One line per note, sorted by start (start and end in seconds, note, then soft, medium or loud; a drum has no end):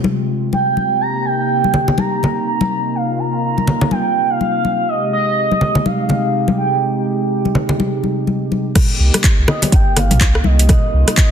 0.00 4.85 C3 medium
0.00 0.98 G#3 medium
0.00 0.99 F4 medium
0.00 0.97 G4 medium
0.04 high conga medium
0.53 1.03 G5 loud
0.53 high conga medium
0.77 high conga medium
1.01 4.85 A#3 medium
1.01 4.85 D#4 medium
1.01 2.93 G4 medium
1.01 1.27 A#5 loud
1.25 2.00 G5 loud
1.64 high conga medium
1.74 low conga medium
1.88 low conga loud
1.98 2.46 A#5 loud
1.98 high conga medium
2.23 high conga medium
2.23 low conga medium
2.47 2.97 A#5 loud
2.61 high conga medium
2.95 4.86 F4 medium
2.95 3.21 F5 loud
3.19 3.93 A#5 loud
3.58 high conga medium
3.67 low conga medium
3.81 low conga loud
3.91 4.31 G5 loud
3.91 high conga medium
4.30 4.40 F5 medium
4.40 4.90 F5 loud
4.40 high conga medium
4.65 high conga medium
4.89 8.72 C3 medium
4.89 8.72 G#3 medium
4.89 8.72 D#4 medium
4.89 8.72 G4 medium
4.89 5.13 D#5 medium
5.13 5.87 D#5 medium
5.51 high conga medium
5.61 low conga medium
5.75 low conga loud
5.86 6.58 F5 medium
5.86 high conga medium
6.09 high conga medium
6.09 low conga medium
6.48 high conga medium
6.58 7.03 G5 medium
7.45 high conga medium
7.55 low conga medium
7.69 low conga medium
7.80 high conga medium
8.04 high conga medium
8.27 high conga medium
8.52 high conga medium
8.75 11.31 C3 medium
8.75 11.31 A#3 medium
8.75 11.31 D#4 medium
8.75 10.67 G4 medium
8.75 kick loud
8.75 cross-stick medium
8.75 closed hi-hat medium
8.75 mid tom medium
8.75 crash loud
8.75 high conga medium
9.00 9.10 C2 loud
9.14 cross-stick medium
9.14 closed hi-hat soft
9.14 high conga medium
9.24 kick loud
9.24 clap loud
9.24 closed hi-hat medium
9.38 9.45 C2 medium
9.48 9.74 D#5 loud
9.48 cross-stick medium
9.48 low conga loud
9.62 closed hi-hat soft
9.62 high conga medium
9.62 low conga loud
9.72 10.12 G1 loud
9.72 9.98 G5 loud
9.72 kick loud
9.72 closed hi-hat medium
9.96 10.47 F5 loud
9.96 cross-stick medium
9.96 closed hi-hat medium
9.96 low conga loud
10.11 10.41 C2 medium
10.11 closed hi-hat soft
10.11 mid tom medium
10.11 high conga medium
10.21 kick loud
10.21 clap loud
10.21 closed hi-hat medium
10.35 cross-stick medium
10.44 10.77 C2 medium
10.44 11.31 D#5 loud
10.44 high conga loud
10.59 closed hi-hat soft
10.68 11.31 F4 medium
10.68 kick loud
10.68 cross-stick loud
10.68 closed hi-hat medium
10.68 mid tom medium
10.68 high conga medium
10.93 11.04 C2 loud
11.07 cross-stick medium
11.07 closed hi-hat soft
11.07 high conga medium
11.17 kick loud
11.17 clap loud
11.17 closed hi-hat medium